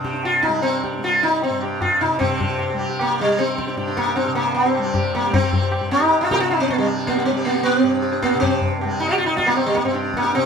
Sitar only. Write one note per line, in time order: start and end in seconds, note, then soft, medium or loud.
0.05 0.23 G4 soft
0.25 0.45 F4 medium
0.42 0.62 D#4 medium
0.62 0.81 C4 medium
0.84 1.02 G4 soft
1.04 1.24 F4 medium
1.23 1.43 D#4 medium
1.43 1.61 C4 medium
1.63 1.81 G4 soft
1.82 2.02 F4 medium
2.01 2.19 D#4 medium
2.19 2.75 C4 medium
2.19 2.29 G4 soft
2.30 2.39 G4 soft
2.40 2.49 G4 soft
2.50 2.57 G4 soft
2.59 2.68 G4 soft
2.70 2.79 G4 soft
2.81 2.88 G4 soft
2.89 3.08 G4 soft
3.01 3.21 A#3 medium
3.11 3.28 G4 soft
3.21 3.40 G3 medium
3.29 3.47 G4 soft
3.38 3.75 C4 medium
3.48 3.57 G4 soft
3.58 3.66 G4 soft
3.67 3.76 G4 soft
3.77 3.86 G4 soft
3.87 4.05 G4 soft
3.97 4.15 A#3 medium
4.06 4.24 G4 soft
4.16 4.35 C4 medium
4.25 4.44 G4 soft
4.35 4.54 A#3 medium
4.55 5.14 C4 medium
4.66 4.84 G4 soft
4.86 4.93 G4 soft
4.94 5.04 G4 soft
5.05 5.22 G4 soft
5.15 5.33 A#3 medium
5.24 5.42 G4 soft
5.34 5.91 C4 loud
5.43 5.52 G4 soft
5.53 5.61 G4 soft
5.63 5.70 G4 soft
5.71 5.80 G4 soft
5.81 5.99 G4 soft
5.91 6.21 D#4 loud
6.00 6.09 G4 soft
6.10 6.29 G4 soft
6.21 6.31 F4 medium
6.31 6.34 G4 loud
6.31 6.36 A#4 loud
6.36 6.38 G4 loud
6.36 6.40 G4 medium
6.40 6.50 F4 loud
6.51 6.60 D#4 loud
6.60 6.70 C4 medium
6.70 6.78 A#3 medium
6.78 6.88 G3 medium
6.87 6.97 G4 soft
6.98 7.16 G4 soft
7.07 7.25 A#3 medium
7.17 7.36 G4 soft
7.25 7.45 C4 medium
7.37 7.54 G4 soft
7.45 7.63 A#3 medium
7.55 7.72 G4 soft
7.63 8.22 C4 medium
7.73 7.82 G4 soft
7.83 8.01 G4 soft
8.02 8.11 G4 soft
8.12 8.31 G4 soft
8.22 8.39 A#3 medium
8.33 8.51 G4 soft
8.40 8.80 C4 loud
8.53 8.70 G4 soft
8.80 9.01 A#3 loud
8.80 8.90 G4 soft
8.91 9.08 G4 soft
9.00 9.09 D#4 loud
9.09 9.18 G4 loud
9.18 9.26 F4 loud
9.26 9.36 D#4 loud
9.37 9.48 F4 loud
9.46 9.55 A#3 loud
9.56 9.66 C4 medium
9.66 9.77 G3 medium
9.75 9.84 A#3 medium
9.85 9.94 C4 medium
9.94 10.12 G4 soft
10.17 10.35 A#3 loud
10.24 10.42 G4 soft
10.35 10.46 C4 loud